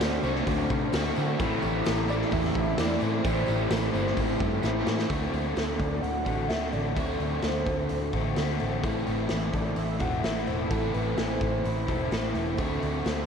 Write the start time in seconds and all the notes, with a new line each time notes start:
Already playing: D3 A3 C4 D4 F#4 C5
0.00 D2 A3, snare, open hi-hat, tambourine
0.23 C2 D3 A3 C4 F#4, tambourine
0.35 snare
0.47 D2 F#4, kick, open hi-hat, tambourine
0.70 C3 A3, kick, tambourine
0.92 D2 D3 A3 C4 F#4, snare, open hi-hat, tambourine
1.16 D3 A3, tambourine
1.39 A1 A2 E3 A3 C4 E4, kick, open hi-hat, tambourine
1.62 A1 G4, tambourine
1.85 A1 A3, snare, open hi-hat, tambourine
2.08 A2 E3 A3 C4 E4 D5, tambourine
2.22 snare
2.31 E2 G4 E5, kick, open hi-hat, tambourine
2.45 snare
2.54 A1 A3, kick, tambourine
2.78 E2 A2 E3 A3 C4 E4 D5, snare, open hi-hat, tambourine
3.00 A2 E3 C5, tambourine
3.24 A1 A2 E3 A3 C4 E4, kick, open hi-hat, tambourine
3.47 A1 G4, tambourine
3.71 A1 A3, snare, open hi-hat, tambourine
3.93 G1 A2 E3 A3 C4 E4, tambourine
4.07 snare
4.17 A1 G4, kick, open hi-hat, tambourine
4.39 G2 A3, kick, tambourine
4.63 A1 A2 E3 A3 C4 E4, snare, tambourine
4.86 A2 E3, snare, tambourine
4.99 snare
5.09 D2 D3 A3 C4 F#4, kick, open hi-hat
5.33 D2, open hi-hat
5.56 D2 A3, snare, open hi-hat
5.80 D2 A3 D5, kick, open hi-hat
6.02 D2 C4 F#5, open hi-hat
6.25 A1 D3 A3 C4 F#4, kick, open hi-hat
6.49 D2 D3 A3 C4 F#4 E5, snare, open hi-hat
6.73 A1 A3 D5, open hi-hat
6.95 D2 D3 A3 C4 F#4 C5, kick, open hi-hat
7.20 D2, open hi-hat
7.42 D2 A3, snare, open hi-hat
7.66 D2 A3, kick, open hi-hat
7.89 D2 C4, open hi-hat
8.13 A1 D3 A3 C4 F#4, kick, open hi-hat
8.36 D2 D3 A3 C4 F#4, snare, open hi-hat
8.60 A1 A3, open hi-hat
8.82 A1 A2 E3 A3 C4 E4, kick, open hi-hat
9.07 A1, open hi-hat
9.29 A1 E3, snare, open hi-hat
9.53 A1 A3 D5, kick, open hi-hat
9.76 A1 C4 E5, open hi-hat
9.99 E1 A2 E3 A3 C4 E4 F#5, kick, open hi-hat
10.23 A1 A2 E3 A3 C4 E4 E5, snare, open hi-hat
10.47 E1 E3 C5, open hi-hat
10.69 A1 A2 E3 A3 C4 E4 A4, kick, open hi-hat
10.94 A1 B4, open hi-hat
11.17 A1 E3 C5, snare, open hi-hat
11.41 A1 A3, kick, open hi-hat
11.64 A1 C4, open hi-hat
11.87 E1 A2 E3 A3 C4 E4, kick, open hi-hat
12.11 A1 A2 E3 A3 C4 E4, snare, open hi-hat
12.35 E1 E3, open hi-hat
12.57 D2 D3 A3 C4 F#4, kick, open hi-hat
12.82 D2, open hi-hat
13.05 D2 A3, snare, open hi-hat